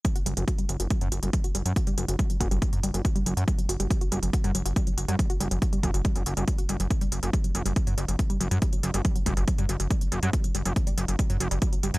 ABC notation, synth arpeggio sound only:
X:1
M:4/4
L:1/16
Q:1/4=140
K:Glyd
V:1 name="Synth arpeggio sound" clef=bass
F, F G, F, F G, F, F G, F, F G, F, F G, F, | F G, F, F G, F, F G, F, F G, F, F G, F, F | G, F, F G, F, F G, F, F G, F, F G, F, F G, | F, F G, F, F G, F, F G, F, F G, F, F G, F, |
F, G, F, F, G, F, F, G, F, F, G, F, F, G, F, F, | G, F, F, G, F, F, G, F, F, G, F, F, G, F, F, G, | F, F, G, F, F, G, F, F, G, F, F, G, F, F, G, F, |]